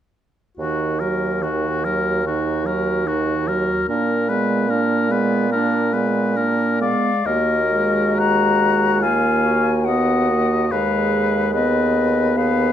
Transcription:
0.57 bassoon D#2, french horn D#3, clarinet D#4, oboe F#4
1.00 french horn F#3, clarinet F#4, oboe A#4
1.42 french horn D#3, clarinet D#4, oboe F#4
1.85 french horn F#3, clarinet F#4, oboe A#4
2.25 french horn D#3, clarinet D#4, oboe F#4
2.66 french horn F#3, clarinet F#4, oboe A#4
3.06 french horn D#3, clarinet D#4, oboe F#4
3.48 french horn F#3, clarinet F#4, oboe A#4
3.88 bassoon A#2, french horn A#3, clarinet D4, oboe A#4
4.29 french horn G#3, clarinet B3, oboe B4
4.68 french horn A#3, clarinet D4, oboe A#4
5.09 french horn G#3, clarinet B3, oboe B4
5.51 french horn A#3, clarinet D4, oboe A#4
5.93 french horn G#3, clarinet B3, oboe B4
6.36 french horn A#3, clarinet D4, oboe A#4
6.80 french horn G#3, clarinet B3, oboe D5, flute F5
7.25 bassoon D#2, french horn A#3, clarinet F#4, oboe A#4, flute D#5
7.73 french horn G#3
8.18 oboe F#5, flute A#5
9.01 french horn A#3, clarinet F4, oboe F5, flute G#5
9.46 clarinet F#4
9.85 french horn B3, oboe D#5, flute F#5
10.30 french horn A#3
10.70 bassoon D#2, french horn G#3, clarinet G#4, oboe B4, flute F5
11.54 french horn B3, oboe B4, flute D#5
12.37 clarinet G#4, oboe B4, flute F5

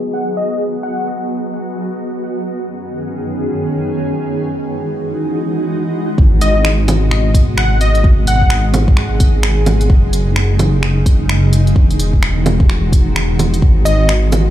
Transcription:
Already playing: ambient pad F#3 B3 G#4
0.14 digital synth lead F#5
0.37 digital synth lead D#5
0.60 ambient pad F#4
0.83 digital synth lead F#5
2.45 ambient pad F#2 D#3 C#4 G#4
4.32 ambient pad E3 G#3 D#4 F#4
6.18 detuned saw bass G#1, ambient pad B2 G#3 F#4, kick
6.41 digital synth lead D#5, closed hi-hat
6.65 finger snap
6.88 closed hi-hat, low bongo
7.11 finger snap
7.34 kick, closed hi-hat
7.57 digital synth lead F#5, finger snap
7.81 digital synth lead D#5, closed hi-hat
7.95 closed hi-hat
8.04 ambient pad G#4, kick
8.27 digital synth lead F#5, closed hi-hat
8.42 kick
8.50 finger snap
8.74 closed hi-hat, low bongo
8.88 kick
8.97 finger snap
9.20 kick, closed hi-hat
9.43 finger snap
9.66 closed hi-hat, low bongo
9.81 closed hi-hat
9.90 detuned saw bass F#1, ambient pad C#3 D#4, kick
10.13 closed hi-hat
10.36 finger snap
10.59 closed hi-hat, low bongo
10.83 finger snap
11.06 kick, closed hi-hat
11.29 finger snap
11.53 closed hi-hat
11.67 closed hi-hat
11.76 detuned saw bass E1, ambient pad D#3 F#4, kick
11.91 closed hi-hat
12.00 closed hi-hat
12.13 kick
12.23 finger snap
12.46 closed hi-hat, low bongo
12.60 kick
12.70 finger snap
12.92 kick, closed hi-hat
13.16 finger snap
13.39 closed hi-hat, low bongo
13.54 closed hi-hat
13.62 detuned saw bass G#1, ambient pad B2 F#4, kick
13.85 digital synth lead D#5, closed hi-hat, cabasa
14.09 finger snap
14.32 closed hi-hat, low bongo, cabasa

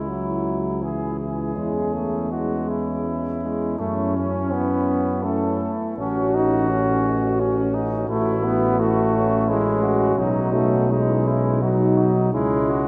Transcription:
Already playing: tuba C#2, french horn section E4, euphonium E4, cornet E4
0.08 trombone F#3
0.82 trombone E3, french horn section E4, euphonium E4, cornet G#4
1.19 cornet G#4
1.56 tuba E2, trombone G#3, euphonium C#4, french horn section E4
1.94 trombone A3
2.31 trombone G#3, euphonium C#4, french horn section E4, cornet F#4
2.69 cornet E4
3.42 trombone G#3
3.78 tuba F#2, trombone A3, cornet C#4, euphonium C#4, french horn section E4
4.17 trombone C#4
4.53 trombone B3
5.24 trombone A3, euphonium C#4, french horn section E4, cornet A4
5.97 tuba A1, euphonium C#4, trombone C#4, cornet F#4, french horn section F#4
6.35 trombone D#4
6.69 euphonium C#4, trombone C#4, french horn section F#4
7.40 cornet C#4
7.75 cornet D#4
8.07 tuba A1, trombone A3, euphonium E4, cornet E4, french horn section F#4
8.45 trombone B3
8.79 trombone A3, french horn section E4, euphonium F#4, cornet F#4
9.14 euphonium C#4
9.48 trombone G#3, cornet E4, french horn section E4
9.82 cornet F#4, french horn section F#4
10.16 tuba B1, trombone F#3, cornet D#4, french horn section F#4
10.53 trombone A3
10.89 trombone G#3, cornet D#4, french horn section E4
11.28 cornet E4
11.61 trombone F#3, french horn section D#4, euphonium D#4, cornet F#4
11.98 cornet D#4
12.33 tuba C#2, trombone G#3, euphonium C#4, cornet E4, french horn section E4
12.70 cornet F#4

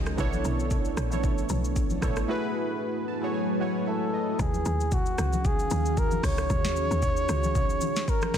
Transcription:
Already playing: log drum bass C#2, ambient pad D#3 F#3 C#4 A#4 F5, synth keys G#3 D#4 F4 F#4 G#4 A#4 C#5 D#5 F5 G#5 A#5
0.06 cross-stick, shaker
0.17 log drum bass B1, ambient pad A3 B3 D4, synth keys B3 D4 E4 A4 C#5, kick, shaker
0.33 high conga, shaker
0.45 log drum bass B1, shaker
0.60 shaker
0.71 kick, low conga, shaker
0.85 shaker
0.97 log drum bass A#1, cross-stick, shaker
1.11 synth keys B3 D4 E4 A4 C#5, high conga, shaker
1.23 kick, low conga, shaker
1.38 shaker
1.49 log drum bass B1, high conga, shaker
1.65 shaker
1.76 kick, shaker
1.90 high conga, shaker
2.01 log drum bass A1, synth keys B3 D4 E4 A4 C#5, kick, cross-stick, low conga, shaker
2.16 cross-stick, shaker
2.28 ambient pad F#3 A3 E4 B4 G#5, synth keys A3 E4 F#4 G#4 B4
3.08 synth keys A5
3.21 synth keys A3 E4 F#4 G#4 C#5
3.34 synth keys G#5
3.59 synth keys G#3 E4 F#4 C#5 F#5 G#5
3.66 synth keys A3
3.87 muted trumpet A4, synth keys E5
4.14 synth keys D#5
4.39 log drum bass D#2, ambient pad D#3 C#4 F#4 G#4 F5, muted trumpet G#4, kick, low conga, shaker
4.54 high conga, shaker
4.65 log drum bass D#2, shaker
4.80 shaker
4.92 muted trumpet F#4, kick, low conga, shaker
5.06 shaker
5.18 log drum bass C#2, cross-stick, shaker
5.33 high conga, shaker
5.44 muted trumpet G#4, kick, low conga, shaker
5.59 shaker
5.71 log drum bass D#2, high conga, shaker
5.86 shaker
5.97 muted trumpet A#4, kick, shaker
6.11 high conga, shaker
6.23 log drum bass C#2, muted trumpet C#5, kick, cross-stick, open hi-hat, low conga, shaker
6.38 cross-stick, shaker
6.50 log drum bass D#2, kick, low conga, shaker
6.64 snare, high conga, shaker
6.76 shaker
6.91 log drum bass D#2, shaker
7.02 kick, low conga, shaker
7.17 shaker
7.29 log drum bass C#2, cross-stick, shaker
7.44 high conga, shaker
7.55 kick, low conga, shaker
7.70 shaker
7.81 high conga, shaker
7.96 snare, shaker
8.08 muted trumpet A#4, kick, shaker
8.22 cross-stick, high conga, shaker
8.34 log drum bass C#2, kick, cross-stick, snare, open hi-hat, low conga, shaker

